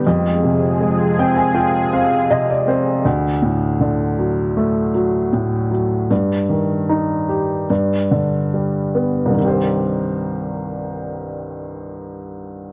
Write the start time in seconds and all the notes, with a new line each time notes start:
0.05 F2 F3 G#3 C4 G#4
0.44 C3
0.81 G#3
1.19 C4 G5
1.36 G#5
1.54 F4 G5
1.93 C4 F5
2.31 C3 D#5
2.50 D5
2.67 C4 C5
3.05 D2
3.42 A2
3.81 D3
4.19 F#3
4.57 A3
4.95 F#3
5.33 A2
5.71 F#3
6.11 G2
6.50 D#3
6.90 D#4
7.29 G4
7.70 G2
8.11 D3
8.54 G3
8.95 B3
9.26 C2
9.31 G2 D#3
9.39 C4
9.44 G4 C5